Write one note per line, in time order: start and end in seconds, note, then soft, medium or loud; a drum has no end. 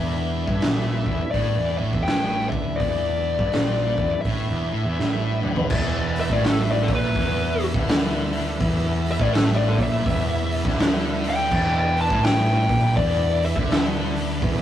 0.00 0.44 E1 medium
0.00 0.47 E2 loud
0.00 5.67 E3 medium
0.00 5.66 D4 medium
0.00 5.67 B4 medium
0.00 1.39 E5 medium
0.47 0.60 G1 loud
0.47 0.61 G2 loud
0.47 kick loud
0.61 1.04 A#1 loud
0.61 1.05 A#2 loud
0.61 snare loud
0.61 open hi-hat medium
1.06 1.19 E1 medium
1.06 1.20 E2 loud
1.06 kick medium
1.31 1.56 A1 medium
1.31 1.75 D5 medium
1.31 kick medium
1.31 open hi-hat medium
1.35 1.56 A2 loud
1.57 1.78 E1 loud
1.57 1.79 E2 loud
1.77 1.92 A1 medium
1.77 1.93 A2 loud
1.77 2.03 E5 loud
1.93 2.06 E1 medium
1.93 2.07 E2 medium
1.93 kick loud
2.04 2.49 A1 medium
2.04 2.47 G5 loud
2.04 open hi-hat medium
2.08 2.51 A2 loud
2.08 snare loud
2.49 2.78 D2 medium
2.49 2.79 D3 medium
2.49 2.79 E5 loud
2.49 kick loud
2.76 4.28 D5 medium
2.76 open hi-hat medium
2.80 3.35 E1 loud
2.80 3.38 E2 loud
2.80 kick loud
3.39 3.52 G1 loud
3.39 3.52 G2 loud
3.39 kick loud
3.52 3.95 A#1 medium
3.52 3.97 A#2 loud
3.52 snare loud
3.52 open hi-hat medium
3.98 4.10 E1 medium
3.98 4.12 E2 loud
3.98 kick medium
4.21 5.37 E5 medium
4.21 open hi-hat medium
4.25 4.46 A1 medium
4.25 4.47 A2 medium
4.25 kick loud
4.48 4.69 E1 medium
4.48 4.70 E2 loud
4.70 4.83 A1 medium
4.70 4.84 A2 loud
4.84 4.97 E1 medium
4.84 4.98 E2 medium
4.98 5.40 A1 medium
4.98 5.43 A2 loud
4.98 snare medium
5.43 5.69 D2 medium
5.43 5.70 D3 medium
5.43 mid tom medium
5.56 floor tom medium
5.70 6.26 E1 loud
5.70 6.29 E2 loud
5.70 14.62 E3 medium
5.70 11.48 E4 medium
5.70 14.62 B4 medium
5.70 kick loud
5.70 crash loud
6.16 open hi-hat medium
6.21 6.33 E5 medium
6.30 6.84 A1 loud
6.30 6.88 A2 loud
6.30 6.42 D5 medium
6.30 kick loud
6.43 snare loud
6.43 open hi-hat medium
6.47 6.60 A4 medium
6.61 6.69 E5 medium
6.71 6.90 D5 loud
6.83 6.89 A4 medium
6.88 7.14 A#1 medium
6.88 7.15 A#2 loud
6.88 kick loud
6.88 open hi-hat medium
6.95 7.64 B4 medium
7.15 7.71 E1 loud
7.15 7.74 E2 loud
7.15 kick loud
7.15 open hi-hat medium
7.60 open hi-hat medium
7.74 8.57 D2 medium
7.74 8.61 D3 loud
7.74 kick loud
7.88 snare loud
7.88 open hi-hat medium
8.33 open hi-hat medium
8.60 9.15 E1 loud
8.60 9.19 E2 loud
8.60 kick loud
8.60 open hi-hat medium
9.06 open hi-hat medium
9.11 9.22 E5 loud
9.19 9.74 A1 loud
9.19 9.77 A2 loud
9.19 9.32 D5 medium
9.19 kick loud
9.33 9.48 A4 medium
9.33 snare loud
9.33 open hi-hat medium
9.45 9.56 E5 medium
9.57 9.77 D5 loud
9.69 9.77 A4 medium
9.78 10.04 A#1 medium
9.78 10.05 A#2 loud
9.78 kick loud
9.78 open hi-hat medium
9.83 10.53 E5 loud
10.06 10.61 E1 medium
10.06 10.64 E2 loud
10.06 kick loud
10.06 open hi-hat medium
10.52 open hi-hat medium
10.65 11.47 D2 medium
10.65 11.50 D3 loud
10.65 kick loud
10.65 snare soft
10.79 snare loud
10.79 open hi-hat medium
11.24 open hi-hat medium
11.29 11.75 G5 loud
11.51 12.06 E1 loud
11.51 12.09 E2 loud
11.51 14.62 D4 medium
11.51 kick loud
11.51 crash medium
11.78 12.00 G5 medium
11.97 open hi-hat medium
12.01 12.24 A5 loud
12.10 12.65 A1 loud
12.10 12.68 A2 loud
12.10 kick loud
12.23 12.95 G5 medium
12.23 snare loud
12.23 open hi-hat medium
12.69 12.95 A#1 loud
12.69 12.97 A#2 loud
12.69 kick loud
12.69 open hi-hat medium
12.96 13.52 E1 medium
12.96 13.55 E2 loud
12.96 13.43 D5 medium
12.96 kick loud
12.96 open hi-hat medium
13.43 13.83 E5 loud
13.43 open hi-hat medium
13.56 14.38 D2 loud
13.56 14.41 D3 loud
13.56 kick loud
13.70 snare loud
13.70 open hi-hat medium
14.15 open hi-hat medium
14.42 14.62 E1 loud
14.42 14.62 E2 loud
14.42 kick loud
14.42 open hi-hat medium